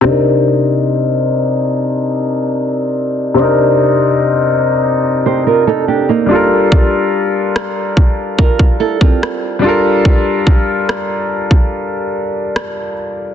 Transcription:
<<
  \new Staff \with { instrumentName = "Nylon-string guitar" } { \time 4/4 \key c \dorian \tempo 4 = 72 r1 | r2 r16 <g' c''>16 <f' bes'>16 <ees' a'>16 <d' g'>16 <bes ees'>8 r16 | r2 <f' bes'>8 <e' a'>16 <c' f'>4~ <c' f'>16~ | <c' f'>16 r2. r8. | }
  \new Staff \with { instrumentName = "Grand piano" } { \time 4/4 \key c \dorian <c c' d' ees' bes'>1 | <c c' d' ees' bes'>2.~ <c c' d' ees' bes'>8 <g d' f' a' bes'>8~ | <g d' f' a' bes'>2.~ <g d' f' a' bes'>8 <g d' f' a' bes'>8~ | <g d' f' a' bes'>2.~ <g d' f' a' bes'>8 r8 | }
  \new DrumStaff \with { instrumentName = "Drums" } \drummode { \time 4/4 r4 r4 r4 r4 | r4 r4 r4 r4 | bd4 ss8 bd8 bd16 bd8 bd16 ss4 | bd8 bd8 ss8. bd16 r4 ss4 | }
>>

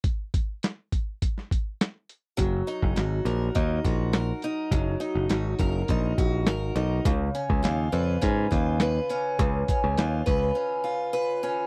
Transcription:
<<
  \new Staff \with { instrumentName = "Steel-string acoustic guitar" } { \time 4/4 \key fis \major \tempo 4 = 103 r1 | fis8 dis'8 fis'8 ais'8 dis'8 fis'8 ais'8 dis'8 | fis8 dis'8 fis'8 ais'8 dis'8 fis'8 ais'8 dis'8 | cis8 cis'8 eis'8 b'8 cis'8 eis'8 b'8 cis'8 |
cis8 cis'8 eis'8 b'8 cis'8 eis'8 b'8 cis'8 | }
  \new Staff \with { instrumentName = "Picked electric bass" } { \clef bass \time 4/4 \key fis \major r1 | fis,,8 r16 fis,,16 gis,,8 ais,,8 dis,8 ais,,4 r8 | fis,,8 r16 fis,,16 gis,,8 fis,,8 ais,,8 ais,,8 gis,,8 b,,8 | cis,8 r16 cis,16 dis,8 eis,8 gis,8 dis,4 r8 |
cis,8 r16 cis,16 dis,8 cis,8 r2 | }
  \new DrumStaff \with { instrumentName = "Drums" } \drummode { \time 4/4 <hh bd>8 <hh bd>8 <hh sn>8 <hh bd>8 <hh bd>16 sn16 <hh bd>8 <hh sn>8 hh8 | <hh bd>8 hh16 bd16 <hh sn>8 hh8 <hh bd>8 <hh bd>8 <hh sn>8 hh8 | <hh bd>8 hh8 <hh sn>8 <hh bd>8 <hh bd>8 <hh bd>8 <hh sn>8 hh8 | <hh bd>8 hh16 bd16 <hh sn>8 hh8 <hh bd>8 <hh bd>8 <hh sn>8 hh8 |
<hh bd>8 <hh bd>8 <hh sn>8 <hh bd>8 r4 r4 | }
>>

